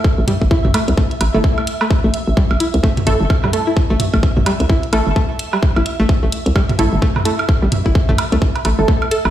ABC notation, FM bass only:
X:1
M:4/4
L:1/16
Q:"Swing 16ths" 1/4=129
K:Am
V:1 name="FM bass" clef=bass
z A,,, z A,,, z A,,, z C,, z2 A,,, G,,, z4 | z A,,, z A,,, z A,,, z C,, z2 A,,, G,,, z4 | z A,,, z A,,, z A,,, z C,, z2 A,,, G,,, z4 | z A,,, z A,,, z A,,, z C,, z2 A,,, G,,, z4 |
z A,,, z A,,, z A,,, z C,, z2 A,,, G,,, z3 A,,, |]